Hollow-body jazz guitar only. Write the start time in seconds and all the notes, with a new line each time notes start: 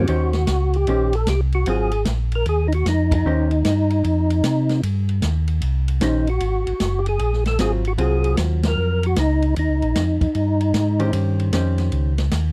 0.09 D#3 C#4 G4 C5
0.88 D#3 C#4 G4 C5
1.67 F#3 C4 F4
3.26 D#3 C#4 G4 C5
6.01 D#3 C#4 G4 C5
7.59 F#3 C4 F4
7.98 F#3 C4 F4
10.99 D#3 C#4 G4 C5
11.53 D#3 C#4 G4 C5